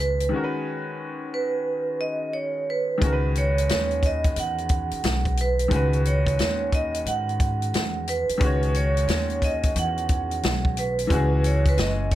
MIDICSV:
0, 0, Header, 1, 6, 480
1, 0, Start_track
1, 0, Key_signature, 4, "minor"
1, 0, Tempo, 674157
1, 227, Time_signature, 4, 2, 24, 8
1, 8651, End_track
2, 0, Start_track
2, 0, Title_t, "Vibraphone"
2, 0, Program_c, 0, 11
2, 0, Note_on_c, 0, 71, 100
2, 215, Note_off_c, 0, 71, 0
2, 954, Note_on_c, 0, 71, 80
2, 1429, Note_on_c, 0, 75, 98
2, 1445, Note_off_c, 0, 71, 0
2, 1662, Note_on_c, 0, 73, 80
2, 1675, Note_off_c, 0, 75, 0
2, 1923, Note_on_c, 0, 71, 90
2, 2033, Note_off_c, 0, 73, 0
2, 2366, Note_off_c, 0, 71, 0
2, 2405, Note_on_c, 0, 73, 92
2, 2890, Note_off_c, 0, 73, 0
2, 2890, Note_on_c, 0, 75, 94
2, 3103, Note_off_c, 0, 75, 0
2, 3130, Note_on_c, 0, 78, 98
2, 3852, Note_on_c, 0, 71, 94
2, 3860, Note_off_c, 0, 78, 0
2, 4320, Note_on_c, 0, 73, 93
2, 4333, Note_off_c, 0, 71, 0
2, 4765, Note_off_c, 0, 73, 0
2, 4804, Note_on_c, 0, 75, 98
2, 5037, Note_on_c, 0, 78, 96
2, 5042, Note_off_c, 0, 75, 0
2, 5761, Note_on_c, 0, 71, 90
2, 5774, Note_off_c, 0, 78, 0
2, 6205, Note_off_c, 0, 71, 0
2, 6239, Note_on_c, 0, 73, 90
2, 6724, Note_on_c, 0, 75, 93
2, 6727, Note_off_c, 0, 73, 0
2, 6963, Note_off_c, 0, 75, 0
2, 6969, Note_on_c, 0, 78, 101
2, 7682, Note_on_c, 0, 71, 85
2, 7699, Note_off_c, 0, 78, 0
2, 8164, Note_on_c, 0, 73, 84
2, 8169, Note_off_c, 0, 71, 0
2, 8316, Note_off_c, 0, 73, 0
2, 8322, Note_on_c, 0, 71, 86
2, 8355, Note_off_c, 0, 71, 0
2, 8391, Note_on_c, 0, 75, 89
2, 8636, Note_off_c, 0, 75, 0
2, 8651, End_track
3, 0, Start_track
3, 0, Title_t, "Upright piano"
3, 0, Program_c, 1, 0
3, 0, Note_on_c, 1, 51, 72
3, 0, Note_on_c, 1, 56, 66
3, 0, Note_on_c, 1, 61, 66
3, 0, Note_on_c, 1, 66, 65
3, 0, Note_on_c, 1, 68, 78
3, 182, Note_off_c, 1, 51, 0
3, 190, Note_off_c, 1, 56, 0
3, 196, Note_off_c, 1, 61, 0
3, 203, Note_off_c, 1, 66, 0
3, 206, Note_on_c, 1, 51, 60
3, 211, Note_off_c, 1, 68, 0
3, 224, Note_on_c, 1, 56, 57
3, 239, Note_on_c, 1, 61, 58
3, 252, Note_on_c, 1, 66, 55
3, 263, Note_on_c, 1, 70, 53
3, 305, Note_off_c, 1, 70, 0
3, 311, Note_on_c, 1, 71, 69
3, 2108, Note_off_c, 1, 51, 0
3, 2117, Note_off_c, 1, 56, 0
3, 2119, Note_on_c, 1, 51, 64
3, 2124, Note_off_c, 1, 61, 0
3, 2131, Note_off_c, 1, 66, 0
3, 2139, Note_on_c, 1, 56, 55
3, 2150, Note_on_c, 1, 61, 57
3, 2161, Note_off_c, 1, 71, 0
3, 2165, Note_on_c, 1, 66, 57
3, 2179, Note_on_c, 1, 70, 53
3, 2223, Note_off_c, 1, 70, 0
3, 2225, Note_on_c, 1, 71, 70
3, 4025, Note_off_c, 1, 51, 0
3, 4035, Note_off_c, 1, 56, 0
3, 4040, Note_off_c, 1, 61, 0
3, 4045, Note_on_c, 1, 51, 63
3, 4047, Note_off_c, 1, 66, 0
3, 4058, Note_on_c, 1, 56, 57
3, 4072, Note_on_c, 1, 61, 56
3, 4077, Note_off_c, 1, 71, 0
3, 4085, Note_on_c, 1, 66, 58
3, 4098, Note_on_c, 1, 71, 69
3, 5948, Note_off_c, 1, 51, 0
3, 5954, Note_off_c, 1, 56, 0
3, 5961, Note_off_c, 1, 61, 0
3, 5964, Note_on_c, 1, 51, 65
3, 5968, Note_off_c, 1, 66, 0
3, 5974, Note_off_c, 1, 71, 0
3, 5977, Note_on_c, 1, 56, 60
3, 5989, Note_on_c, 1, 61, 58
3, 6007, Note_on_c, 1, 66, 62
3, 6020, Note_on_c, 1, 73, 68
3, 7867, Note_off_c, 1, 51, 0
3, 7874, Note_off_c, 1, 56, 0
3, 7879, Note_off_c, 1, 61, 0
3, 7883, Note_on_c, 1, 52, 66
3, 7888, Note_off_c, 1, 66, 0
3, 7895, Note_off_c, 1, 73, 0
3, 7896, Note_on_c, 1, 56, 58
3, 7909, Note_on_c, 1, 61, 63
3, 7924, Note_on_c, 1, 66, 61
3, 7940, Note_on_c, 1, 68, 74
3, 8651, Note_off_c, 1, 52, 0
3, 8651, Note_off_c, 1, 56, 0
3, 8651, Note_off_c, 1, 61, 0
3, 8651, Note_off_c, 1, 66, 0
3, 8651, Note_off_c, 1, 68, 0
3, 8651, End_track
4, 0, Start_track
4, 0, Title_t, "Upright bass"
4, 0, Program_c, 2, 32
4, 0, Note_on_c, 2, 37, 88
4, 209, Note_off_c, 2, 37, 0
4, 2150, Note_on_c, 2, 37, 105
4, 2605, Note_off_c, 2, 37, 0
4, 2632, Note_on_c, 2, 39, 94
4, 3086, Note_off_c, 2, 39, 0
4, 3105, Note_on_c, 2, 40, 85
4, 3482, Note_off_c, 2, 40, 0
4, 3587, Note_on_c, 2, 35, 94
4, 4043, Note_off_c, 2, 35, 0
4, 4067, Note_on_c, 2, 37, 108
4, 4523, Note_off_c, 2, 37, 0
4, 4548, Note_on_c, 2, 39, 93
4, 5004, Note_off_c, 2, 39, 0
4, 5024, Note_on_c, 2, 44, 84
4, 5481, Note_off_c, 2, 44, 0
4, 5509, Note_on_c, 2, 40, 85
4, 5884, Note_off_c, 2, 40, 0
4, 5988, Note_on_c, 2, 37, 113
4, 6443, Note_off_c, 2, 37, 0
4, 6462, Note_on_c, 2, 39, 100
4, 6921, Note_off_c, 2, 39, 0
4, 6947, Note_on_c, 2, 40, 107
4, 7403, Note_off_c, 2, 40, 0
4, 7430, Note_on_c, 2, 35, 87
4, 7884, Note_off_c, 2, 35, 0
4, 7910, Note_on_c, 2, 37, 112
4, 8364, Note_off_c, 2, 37, 0
4, 8383, Note_on_c, 2, 30, 90
4, 8651, Note_off_c, 2, 30, 0
4, 8651, End_track
5, 0, Start_track
5, 0, Title_t, "Muted upright bass strokes"
5, 3502, Note_on_c, 9, 29, 49
5, 3574, Note_off_c, 9, 29, 0
5, 5905, Note_on_c, 9, 29, 46
5, 5976, Note_off_c, 9, 29, 0
5, 8651, End_track
6, 0, Start_track
6, 0, Title_t, "Drums"
6, 144, Note_on_c, 9, 42, 55
6, 215, Note_off_c, 9, 42, 0
6, 2148, Note_on_c, 9, 36, 110
6, 2149, Note_on_c, 9, 42, 87
6, 2219, Note_off_c, 9, 36, 0
6, 2220, Note_off_c, 9, 42, 0
6, 2388, Note_on_c, 9, 42, 68
6, 2460, Note_off_c, 9, 42, 0
6, 2550, Note_on_c, 9, 42, 59
6, 2621, Note_off_c, 9, 42, 0
6, 2629, Note_on_c, 9, 42, 86
6, 2639, Note_on_c, 9, 38, 104
6, 2701, Note_off_c, 9, 42, 0
6, 2710, Note_off_c, 9, 38, 0
6, 2782, Note_on_c, 9, 42, 36
6, 2854, Note_off_c, 9, 42, 0
6, 2867, Note_on_c, 9, 36, 82
6, 2870, Note_on_c, 9, 42, 72
6, 2938, Note_off_c, 9, 36, 0
6, 2941, Note_off_c, 9, 42, 0
6, 3020, Note_on_c, 9, 42, 60
6, 3023, Note_on_c, 9, 36, 90
6, 3092, Note_off_c, 9, 42, 0
6, 3094, Note_off_c, 9, 36, 0
6, 3106, Note_on_c, 9, 42, 88
6, 3177, Note_off_c, 9, 42, 0
6, 3263, Note_on_c, 9, 42, 33
6, 3334, Note_off_c, 9, 42, 0
6, 3339, Note_on_c, 9, 42, 63
6, 3345, Note_on_c, 9, 36, 95
6, 3411, Note_off_c, 9, 42, 0
6, 3417, Note_off_c, 9, 36, 0
6, 3499, Note_on_c, 9, 42, 48
6, 3570, Note_off_c, 9, 42, 0
6, 3586, Note_on_c, 9, 42, 86
6, 3595, Note_on_c, 9, 38, 107
6, 3657, Note_off_c, 9, 42, 0
6, 3666, Note_off_c, 9, 38, 0
6, 3741, Note_on_c, 9, 36, 78
6, 3741, Note_on_c, 9, 42, 33
6, 3812, Note_off_c, 9, 36, 0
6, 3812, Note_off_c, 9, 42, 0
6, 3826, Note_on_c, 9, 42, 76
6, 3897, Note_off_c, 9, 42, 0
6, 3981, Note_on_c, 9, 42, 57
6, 4052, Note_off_c, 9, 42, 0
6, 4067, Note_on_c, 9, 36, 113
6, 4068, Note_on_c, 9, 42, 90
6, 4138, Note_off_c, 9, 36, 0
6, 4139, Note_off_c, 9, 42, 0
6, 4223, Note_on_c, 9, 42, 36
6, 4294, Note_off_c, 9, 42, 0
6, 4310, Note_on_c, 9, 42, 69
6, 4381, Note_off_c, 9, 42, 0
6, 4461, Note_on_c, 9, 36, 93
6, 4469, Note_on_c, 9, 42, 55
6, 4532, Note_off_c, 9, 36, 0
6, 4541, Note_off_c, 9, 42, 0
6, 4549, Note_on_c, 9, 42, 83
6, 4559, Note_on_c, 9, 38, 115
6, 4620, Note_off_c, 9, 42, 0
6, 4630, Note_off_c, 9, 38, 0
6, 4788, Note_on_c, 9, 36, 87
6, 4789, Note_on_c, 9, 42, 73
6, 4859, Note_off_c, 9, 36, 0
6, 4860, Note_off_c, 9, 42, 0
6, 4945, Note_on_c, 9, 42, 63
6, 5016, Note_off_c, 9, 42, 0
6, 5029, Note_on_c, 9, 42, 90
6, 5101, Note_off_c, 9, 42, 0
6, 5190, Note_on_c, 9, 42, 32
6, 5262, Note_off_c, 9, 42, 0
6, 5268, Note_on_c, 9, 36, 95
6, 5268, Note_on_c, 9, 42, 61
6, 5339, Note_off_c, 9, 42, 0
6, 5340, Note_off_c, 9, 36, 0
6, 5425, Note_on_c, 9, 42, 48
6, 5496, Note_off_c, 9, 42, 0
6, 5511, Note_on_c, 9, 42, 88
6, 5520, Note_on_c, 9, 38, 110
6, 5582, Note_off_c, 9, 42, 0
6, 5591, Note_off_c, 9, 38, 0
6, 5750, Note_on_c, 9, 42, 79
6, 5821, Note_off_c, 9, 42, 0
6, 5904, Note_on_c, 9, 42, 57
6, 5976, Note_off_c, 9, 42, 0
6, 5986, Note_on_c, 9, 36, 112
6, 5986, Note_on_c, 9, 42, 88
6, 6057, Note_off_c, 9, 42, 0
6, 6058, Note_off_c, 9, 36, 0
6, 6142, Note_on_c, 9, 42, 34
6, 6213, Note_off_c, 9, 42, 0
6, 6226, Note_on_c, 9, 42, 72
6, 6297, Note_off_c, 9, 42, 0
6, 6385, Note_on_c, 9, 42, 58
6, 6456, Note_off_c, 9, 42, 0
6, 6468, Note_on_c, 9, 42, 88
6, 6478, Note_on_c, 9, 38, 112
6, 6540, Note_off_c, 9, 42, 0
6, 6549, Note_off_c, 9, 38, 0
6, 6620, Note_on_c, 9, 42, 36
6, 6691, Note_off_c, 9, 42, 0
6, 6707, Note_on_c, 9, 36, 81
6, 6707, Note_on_c, 9, 42, 78
6, 6778, Note_off_c, 9, 36, 0
6, 6778, Note_off_c, 9, 42, 0
6, 6859, Note_on_c, 9, 42, 66
6, 6862, Note_on_c, 9, 36, 92
6, 6930, Note_off_c, 9, 42, 0
6, 6933, Note_off_c, 9, 36, 0
6, 6947, Note_on_c, 9, 42, 90
6, 7018, Note_off_c, 9, 42, 0
6, 7103, Note_on_c, 9, 42, 34
6, 7174, Note_off_c, 9, 42, 0
6, 7183, Note_on_c, 9, 42, 65
6, 7187, Note_on_c, 9, 36, 88
6, 7254, Note_off_c, 9, 42, 0
6, 7258, Note_off_c, 9, 36, 0
6, 7342, Note_on_c, 9, 42, 45
6, 7413, Note_off_c, 9, 42, 0
6, 7429, Note_on_c, 9, 42, 81
6, 7438, Note_on_c, 9, 38, 111
6, 7500, Note_off_c, 9, 42, 0
6, 7509, Note_off_c, 9, 38, 0
6, 7582, Note_on_c, 9, 36, 87
6, 7653, Note_off_c, 9, 36, 0
6, 7667, Note_on_c, 9, 42, 84
6, 7739, Note_off_c, 9, 42, 0
6, 7822, Note_on_c, 9, 42, 57
6, 7894, Note_off_c, 9, 42, 0
6, 7906, Note_on_c, 9, 36, 110
6, 7907, Note_on_c, 9, 42, 86
6, 7977, Note_off_c, 9, 36, 0
6, 7978, Note_off_c, 9, 42, 0
6, 8146, Note_on_c, 9, 42, 69
6, 8217, Note_off_c, 9, 42, 0
6, 8299, Note_on_c, 9, 36, 94
6, 8301, Note_on_c, 9, 42, 58
6, 8371, Note_off_c, 9, 36, 0
6, 8373, Note_off_c, 9, 42, 0
6, 8385, Note_on_c, 9, 42, 79
6, 8395, Note_on_c, 9, 38, 109
6, 8457, Note_off_c, 9, 42, 0
6, 8466, Note_off_c, 9, 38, 0
6, 8624, Note_on_c, 9, 42, 71
6, 8626, Note_on_c, 9, 36, 84
6, 8651, Note_off_c, 9, 36, 0
6, 8651, Note_off_c, 9, 42, 0
6, 8651, End_track
0, 0, End_of_file